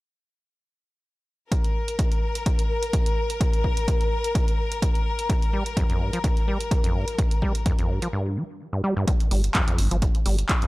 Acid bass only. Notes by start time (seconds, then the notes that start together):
5.30 G2
5.53 G3
5.77 F2
5.89 F2
6.00 G2
6.13 F3
6.24 G2
6.48 G3
6.84 F2
6.95 G2
7.19 G2
7.42 G3
7.66 F2
7.79 F2
7.89 G2
8.02 F3
8.13 G2
8.37 G3
8.73 G2
8.84 G3
8.97 G2
9.08 G2
9.31 G3
9.55 F2
9.68 F2
9.78 G2
9.91 F3
10.02 G2
10.26 G3
10.62 F2